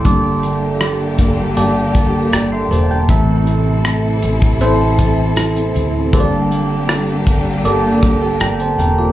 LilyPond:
<<
  \new Staff \with { instrumentName = "Tine electric piano" } { \time 4/4 \key g \dorian \tempo 4 = 79 << { <e'' c'''>16 r2. <e'' c'''>16 <c'' a''>16 <bes' g''>16~ | <bes' g''>16 r2. r8. | r2. <bes' g''>16 <c'' a''>16 <bes' g''>16 <f' d''>16 | } \\ { <bes g' a' d''>2 <bes g' a' d''>2 | <c' e' a' e''>2 <c' e' a' c''>2 | <bes g' a' c'' d''>2 <bes g' a' d''>2 | } >> }
  \new Staff \with { instrumentName = "Tine electric piano" } { \clef bass \time 4/4 \key g \dorian <g, d>4. r2 r8 | <a, e>4. r2 r8 | <g, d>4. r2 r8 | }
  \new Staff \with { instrumentName = "Steel-string acoustic guitar" } { \time 4/4 \key g \dorian <g, a'>8 bes8 a'8 bes8 g'8 a'8 g'8 bes8 | <a, a'>8 c'8 a'8 c'8 e'8 a'8 e'8 c'8 | <g, a'>8 bes8 a'8 bes8 g'8 g'16 a'16 g'8 bes8 | }
  \new Staff \with { instrumentName = "String section" } { \time 4/4 \key g \dorian << { <d g bes g'>1 | <c e e' a'>1 | <d g bes g'>1 | } \\ { r1 | c'1~ | c'1 | } >> }
  \new Staff \with { instrumentName = "Fingered electric bass" } { \clef bass \time 4/4 \key g \dorian g,,4. g,,8 g,,4 g,,8 e,,8 | a,,4. a,,8 a,,4. d,8 | g,,4. g,,8 g,,4 g,,8 e,,8 | }
  \new DrumStaff \with { instrumentName = "Drums" } \drummode { \time 4/4 <hh bd>8 hh8 <hh ss>8 <hh bd>8 hh8 <hh bd>8 <hh ss>8 hh8 | <hh bd>8 hh8 <hh ss>8 hh16 bd16 hh8 <hh bd>8 <hh ss>16 hh16 hh8 | <hh bd>8 hh8 <hh ss>8 <hh bd>8 hh8 <hh bd>8 <hh ss>16 hh16 hh8 | }
>>